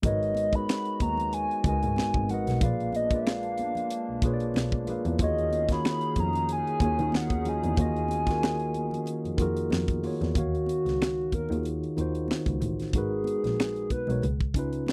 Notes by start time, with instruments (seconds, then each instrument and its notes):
0.02 double bass G#1, tine electric piano G#3 D#4 F#4 A#4, analog synth pad G#3 B3 F#4, soft synth lead D#5, kick, closed hi-hat, muted conga, low conga
0.07 tine electric piano B4 C#5
0.23 closed hi-hat
0.35 closed hi-hat, muted conga, high conga
0.52 tine electric piano G#3 D#4 F#4 G#4, soft synth lead B5, kick, closed hi-hat
0.56 tine electric piano B4 D#5
0.69 finger snap, snare, muted conga
0.85 closed hi-hat
1.00 double bass D#2, soft synth lead A#5, kick, closed hi-hat, muted conga, high conga
1.17 closed hi-hat, low conga
1.32 soft synth lead G#5, closed hi-hat, muted conga
1.51 closed hi-hat
1.64 double bass C#2, tine electric piano G#3 D#4 F#4 A#4, soft synth lead G#5, kick, closed hi-hat
1.68 tine electric piano B4 D#5
1.83 double bass G#2, closed hi-hat
1.96 double bass G#1, finger snap, snare, muted conga, high conga
2.14 double bass G#1, kick, high conga
2.29 tine electric piano G#3 D#4 F#4 A#4, soft synth lead F#5, closed hi-hat, low conga
2.33 tine electric piano B4 D#5
2.47 double bass B1, snare, closed hi-hat
2.61 double bass A#1, analog synth pad G#3 A#3 D4, tine electric piano A#3 F4 G#4 B4, soft synth lead F5, kick, closed hi-hat, low conga
2.65 tine electric piano D5
2.80 closed hi-hat
2.93 soft synth lead D#5, closed hi-hat, muted conga, high conga
3.11 tine electric piano A#3 F4 G#4 B4, soft synth lead F5, kick, closed hi-hat
3.15 tine electric piano D5
3.27 finger snap, snare
3.43 closed hi-hat
3.58 closed hi-hat, muted conga, high conga
3.75 closed hi-hat, low conga
3.90 closed hi-hat
4.09 double bass B1
4.22 double bass B1, tine electric piano A#3 F4 G#4 B4, kick, closed hi-hat, muted conga
4.27 tine electric piano C#5
4.33 tine electric piano D5
4.40 closed hi-hat
4.54 double bass B1, finger snap, snare, muted conga, high conga
4.72 kick, high conga
4.87 tine electric piano A#3 F4 G#4 B4, closed hi-hat, muted conga, low conga
4.91 tine electric piano F5
5.05 double bass E2, closed hi-hat
5.19 double bass D#2, tine electric piano D#3 A#3 F4 F#4, analog synth pad D#3 C#4 D#4 G#4, soft synth lead D#5, kick, closed hi-hat, muted conga, low conga
5.23 tine electric piano G#4 C#5
5.38 closed hi-hat
5.50 closed hi-hat, high conga
5.68 tine electric piano D#3 A#3 F4 F#4 G#4, kick, snare, closed hi-hat
5.72 tine electric piano C#5, soft synth lead B5
5.84 finger snap, snare, muted conga
6.01 closed hi-hat
6.16 double bass F2, kick, closed hi-hat, muted conga, high conga
6.20 soft synth lead A#5
6.33 closed hi-hat, low conga
6.49 soft synth lead G#5, closed hi-hat
6.67 closed hi-hat
6.80 double bass D#2, tine electric piano D#3 A#3 F4 F#4 G#4, kick, closed hi-hat, muted conga
6.85 tine electric piano C#5
6.99 double bass D#3, closed hi-hat
7.12 double bass D#2, finger snap, snare, muted conga, high conga
7.16 soft synth lead F#5
7.29 double bass D#2, kick, closed hi-hat, high conga
7.45 tine electric piano D#3 A#3 F4 F#4 G#4, soft synth lead G#5, closed hi-hat, muted conga, low conga
7.50 tine electric piano D#5
7.63 double bass E2, closed hi-hat
7.77 double bass D#2, tine electric piano D#3 A#3 F4 F#4 G#4, kick, closed hi-hat, muted conga, low conga
7.81 tine electric piano D#5
7.96 closed hi-hat
8.08 closed hi-hat, muted conga, high conga
8.26 tine electric piano D#3 A#3 F4 F#4 G#4, kick, snare, closed hi-hat
8.31 tine electric piano A#4
8.43 finger snap, snare, muted conga
8.60 closed hi-hat
8.74 closed hi-hat, muted conga, high conga
8.91 closed hi-hat, low conga
9.06 closed hi-hat, muted conga
9.25 double bass F2, closed hi-hat
9.37 double bass F2, tine electric piano D#3 A#3 F4 F#4 G#4, kick, closed hi-hat, muted conga
9.42 tine electric piano A#4
9.57 closed hi-hat
9.70 double bass F2, finger snap, snare, muted conga, high conga
9.88 kick, closed hi-hat, high conga
10.02 tine electric piano D#3 A#3 F4 F#4 G#4, open hi-hat, low conga
10.07 tine electric piano C#5
10.21 double bass E2, snare, closed hi-hat
10.35 double bass D#2, tine electric piano D#3 D#4 F#4 F5, soft synth lead F#4, kick, closed hi-hat
10.39 tine electric piano C#5
10.55 closed hi-hat
10.66 closed hi-hat, high conga
10.86 double bass C#2, snare, closed hi-hat
11.00 finger snap, snare, muted conga, high conga
11.32 double bass D#2, soft synth lead A#4, kick, closed hi-hat, muted conga, high conga
11.49 double bass D#2, tine electric piano D#3 D#4 F4, closed hi-hat, low conga
11.53 tine electric piano F#4 G#4
11.63 closed hi-hat, muted conga
11.84 closed hi-hat
11.96 double bass D#2, tine electric piano D#3 D#4 F4 F#4, closed hi-hat, muted conga
12.01 tine electric piano C5
12.15 closed hi-hat
12.28 finger snap, snare, high conga
12.45 double bass C#2, kick, closed hi-hat, high conga
12.61 double bass A1, closed hi-hat, muted conga, low conga
12.80 snare, closed hi-hat
12.93 double bass G#1, tine electric piano G#3 D#4 F#4 A#4, soft synth lead G#4, kick, closed hi-hat
12.98 tine electric piano B4
13.24 closed hi-hat, high conga
13.44 double bass A#1, snare, closed hi-hat
13.58 finger snap, snare, high conga
13.76 closed hi-hat
13.90 double bass B1, soft synth lead B4, kick, closed hi-hat, muted conga, high conga
14.07 double bass B1, tine electric piano G#3 D#4 F#4 A#4, closed hi-hat, low conga
14.12 tine electric piano C#5
14.22 double bass C#2, closed hi-hat, muted conga
14.41 kick
14.54 tine electric piano C#3 C#4 D#4 F4, kick, closed hi-hat, muted conga
14.59 tine electric piano B4
14.73 closed hi-hat
14.86 finger snap, snare, high conga